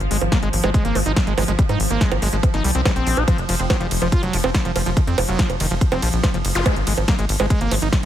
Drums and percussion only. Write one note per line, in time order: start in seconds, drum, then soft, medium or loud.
0.00 closed hi-hat medium
0.11 open hi-hat loud
0.21 closed hi-hat medium
0.21 high bongo soft
0.32 kick loud
0.32 snare loud
0.32 closed hi-hat medium
0.43 closed hi-hat medium
0.53 open hi-hat loud
0.64 closed hi-hat medium
0.64 high bongo medium
0.74 kick loud
0.74 closed hi-hat medium
0.85 closed hi-hat medium
0.95 open hi-hat loud
0.95 high bongo soft
1.06 closed hi-hat medium
1.16 kick loud
1.16 snare loud
1.16 closed hi-hat medium
1.27 closed hi-hat soft
1.38 open hi-hat loud
1.38 high bongo medium
1.48 closed hi-hat medium
1.59 kick loud
1.59 closed hi-hat medium
1.69 closed hi-hat medium
1.69 high bongo soft
1.80 open hi-hat loud
1.90 closed hi-hat medium
2.01 kick loud
2.01 snare loud
2.01 closed hi-hat medium
2.12 closed hi-hat medium
2.12 high bongo medium
2.22 snare soft
2.22 open hi-hat loud
2.33 closed hi-hat medium
2.43 kick loud
2.43 closed hi-hat medium
2.43 high bongo soft
2.54 snare soft
2.54 closed hi-hat soft
2.64 open hi-hat loud
2.75 closed hi-hat soft
2.85 kick loud
2.85 snare loud
2.85 closed hi-hat medium
2.85 high bongo medium
2.96 closed hi-hat medium
3.07 open hi-hat loud
3.17 closed hi-hat medium
3.17 high bongo soft
3.28 kick loud
3.28 closed hi-hat loud
3.28 ride medium
3.28 high bongo soft
3.38 closed hi-hat medium
3.49 open hi-hat loud
3.49 ride medium
3.59 closed hi-hat medium
3.70 kick loud
3.70 snare loud
3.70 closed hi-hat medium
3.70 ride medium
3.70 high bongo medium
3.81 closed hi-hat medium
3.91 open hi-hat loud
3.91 ride medium
4.02 closed hi-hat medium
4.02 high bongo soft
4.12 kick loud
4.12 closed hi-hat medium
4.12 ride medium
4.23 closed hi-hat medium
4.33 open hi-hat loud
4.33 ride medium
4.44 high bongo medium
4.55 kick loud
4.55 snare loud
4.55 closed hi-hat medium
4.55 ride medium
4.65 closed hi-hat soft
4.76 open hi-hat loud
4.76 ride medium
4.76 high bongo soft
4.86 closed hi-hat medium
4.97 kick loud
4.97 closed hi-hat medium
4.97 ride medium
5.07 closed hi-hat medium
5.18 open hi-hat loud
5.18 ride medium
5.18 high bongo medium
5.28 closed hi-hat medium
5.39 kick loud
5.39 snare loud
5.39 closed hi-hat medium
5.39 ride medium
5.50 closed hi-hat medium
5.50 high bongo soft
5.60 open hi-hat loud
5.60 ride medium
5.71 closed hi-hat medium
5.81 kick loud
5.81 closed hi-hat medium
5.81 ride medium
5.92 snare soft
5.92 closed hi-hat medium
5.92 high bongo medium
6.02 open hi-hat loud
6.02 ride medium
6.13 closed hi-hat medium
6.24 kick loud
6.24 snare loud
6.24 closed hi-hat loud
6.24 ride medium
6.24 high bongo soft
6.34 closed hi-hat medium
6.45 open hi-hat loud
6.45 ride medium
6.55 closed hi-hat medium
6.66 kick loud
6.66 closed hi-hat loud
6.66 ride medium
6.66 high bongo medium
6.76 closed hi-hat medium
6.87 open hi-hat loud
6.87 ride medium
6.97 closed hi-hat medium
6.97 high bongo soft
7.08 kick loud
7.08 snare loud
7.08 closed hi-hat loud
7.08 ride medium
7.19 closed hi-hat medium
7.29 open hi-hat loud
7.29 ride medium
7.40 closed hi-hat medium
7.40 high bongo medium
7.50 kick loud
7.50 closed hi-hat loud
7.50 ride medium
7.61 closed hi-hat medium
7.71 open hi-hat loud
7.71 ride medium
7.71 high bongo soft
7.82 closed hi-hat medium
7.93 kick loud
7.93 snare loud
7.93 closed hi-hat loud
7.93 ride medium